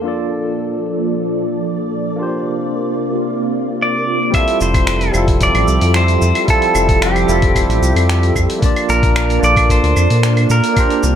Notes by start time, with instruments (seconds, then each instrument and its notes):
Already playing: string machine A4
0.02 string machine A#2 F3 D5, tine electric piano A#3 D4 F4
0.06 tine electric piano A4 D5
2.16 string machine C3 A#3 F4, tine electric piano A#3 D4 F4
2.21 tine electric piano G4 C5
3.82 pedal steel guitar D5
4.30 string machine F3 G4 A4 E5, tine electric piano G3 C4 E4, kick, open hi-hat, claves, shaker
4.35 tine electric piano F4 A4, pedal steel guitar E5
4.48 open hi-hat, shaker
4.61 analog synth bass F1, pedal steel guitar C5, shaker
4.74 kick, open hi-hat, claves, shaker
4.87 finger snap, open hi-hat, shaker
5.01 open hi-hat, shaker
5.11 analog synth bass F1, tine electric piano G3 C4 E4, claves, shaker
5.16 tine electric piano F4 A4
5.28 kick, open hi-hat, shaker
5.41 pedal steel guitar D5, kick, open hi-hat, shaker
5.55 analog synth bass A1, open hi-hat, claves, shaker
5.68 analog synth bass C2, shaker
5.81 analog synth bass F2, open hi-hat, shaker
5.94 pedal steel guitar C5, finger snap, open hi-hat, claves, shaker
6.08 open hi-hat, shaker
6.22 analog synth bass F2, shaker
6.35 open hi-hat, claves, shaker
6.45 tine electric piano G3 C4 E4, kick, open hi-hat, shaker
6.50 tine electric piano F4 A4, pedal steel guitar A4
6.62 open hi-hat, shaker
6.75 analog synth bass F1, claves, shaker
6.89 kick, open hi-hat, shaker
7.02 pedal steel guitar G4, finger snap, open hi-hat, shaker
7.16 open hi-hat, claves, shaker
7.26 analog synth bass F1, tine electric piano G3 C4 E4, shaker
7.30 tine electric piano F4 A4
7.42 kick, open hi-hat, shaker
7.55 kick, open hi-hat, claves, shaker
7.69 analog synth bass A1, open hi-hat, shaker
7.82 analog synth bass C2, shaker
7.96 analog synth bass F2, open hi-hat, claves, shaker
8.09 finger snap, open hi-hat, shaker
8.23 open hi-hat, shaker
8.36 analog synth bass F2, kick, claves, shaker
8.50 open hi-hat, shaker
8.59 tine electric piano A#3 D4 F4, string machine A#3 D4 A5, kick, open hi-hat, shaker
8.64 tine electric piano D5 A5
8.76 open hi-hat, claves, shaker
8.89 analog synth bass A#1, pedal steel guitar A#4, shaker
9.03 kick, open hi-hat, shaker
9.16 finger snap, open hi-hat, claves, shaker
9.30 open hi-hat, shaker
9.40 analog synth bass A#1, tine electric piano A#3 D4 F4, shaker
9.44 tine electric piano A4 D5, pedal steel guitar D5
9.57 kick, open hi-hat, claves, shaker
9.69 pedal steel guitar C5, kick, open hi-hat, shaker
9.83 analog synth bass D2, open hi-hat, shaker
9.96 analog synth bass F2, claves, shaker
10.10 analog synth bass A#2, open hi-hat, shaker
10.23 finger snap, open hi-hat, shaker
10.37 open hi-hat, claves, shaker
10.50 analog synth bass A#2, pedal steel guitar A#4, shaker
10.64 open hi-hat, shaker
10.73 string machine C3 F4, tine electric piano A#3 D4 F4, kick, open hi-hat, claves, shaker
10.78 tine electric piano G4 C5
10.90 open hi-hat, shaker
11.03 analog synth bass C2, shaker